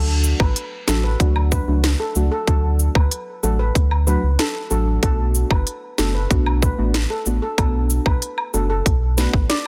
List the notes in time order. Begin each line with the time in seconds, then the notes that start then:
Already playing: D2 F#3 A3 D4 F#4
0.24 cabasa
0.40 A1 B4, kick, high woodblock
0.56 closed hi-hat
0.88 A1 F#3 A3 D4 F#4 A4, snare, cabasa
1.04 B4
1.20 D2 F#3 A3 D4 F#4, kick, closed hi-hat
1.36 high woodblock
1.52 B4, kick, cabasa
1.67 C#2 F#3 A3 D4 F#4
1.84 snare, closed hi-hat
2.00 A4
2.15 C#2 F#3 A3 D4 F#4, cabasa
2.32 A4
2.47 D2 F#3 A3 D4 F#4 A4, kick, closed hi-hat
2.79 cabasa
2.95 D2 B4, kick, high woodblock
3.11 closed hi-hat
3.43 A1 F#3 A3 D4 F#4 A4, cabasa
3.59 B4
3.75 D2, kick, closed hi-hat
3.91 high woodblock
4.07 F#3 A3 D4 F#4 B4, cabasa
4.23 C#2
4.39 A4, snare, closed hi-hat
4.71 A1 F#3 A3 D4 F#4 A4, cabasa
5.03 B1 A3 B3 D4 F#4 A4, kick, closed hi-hat
5.35 cabasa
5.51 G1 B4, kick, high woodblock
5.67 closed hi-hat
5.98 F#1 A3 B3 D4 F#4 A4, snare, cabasa
6.15 B4
6.30 B1 A3 B3 D4 F#4, kick, closed hi-hat
6.46 high woodblock
6.62 B4, kick, cabasa
6.78 A1 A3 B3 D4 F#4
6.94 snare, closed hi-hat
7.10 A4
7.26 A1 A3 B3 D4 F#4, cabasa
7.42 A4
7.58 B1 A3 B3 D4 F#4 A4, kick, closed hi-hat, high woodblock
7.90 cabasa
8.06 B1 B4, kick, high woodblock
8.22 closed hi-hat
8.38 high woodblock
8.54 F#1 A3 B3 D4 F#4 A4, cabasa
8.70 A4
8.86 B1, kick, closed hi-hat
9.17 A3 B3 D4 F#4 B4, snare, cabasa
9.33 A1, kick
9.50 D5, snare, closed hi-hat